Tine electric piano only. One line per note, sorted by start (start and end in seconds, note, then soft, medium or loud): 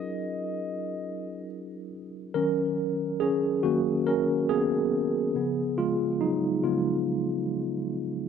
0.00 1.87 F#3 medium
0.00 1.88 C#4 medium
0.00 1.88 D#4 medium
0.00 1.88 F4 medium
0.00 1.89 G#4 medium
0.00 1.89 A#4 medium
2.34 3.59 D#3 medium
2.34 3.60 F#3 soft
2.34 3.17 C#4 medium
2.34 3.23 A#4 loud
3.20 3.61 C#4 medium
3.20 3.65 G#4 medium
3.63 4.02 D#3 soft
3.63 4.03 F#3 soft
3.63 4.04 A#3 medium
3.63 4.03 C#4 medium
3.63 4.07 F#4 medium
4.07 4.47 C#4 medium
4.07 4.51 A#4 loud
4.49 5.35 B3 medium
4.49 5.82 G#4 medium
5.35 6.63 C#3 medium
5.35 6.63 F3 soft
5.35 6.64 B3 medium
5.78 6.18 G#3 medium
5.78 6.22 F4 medium
6.21 6.61 F#3 medium
6.21 6.65 D#4 medium
6.64 7.02 C#3 soft
6.64 7.03 F3 soft
6.64 8.29 G#3 medium
6.64 7.03 B3 medium
6.64 8.29 F4 medium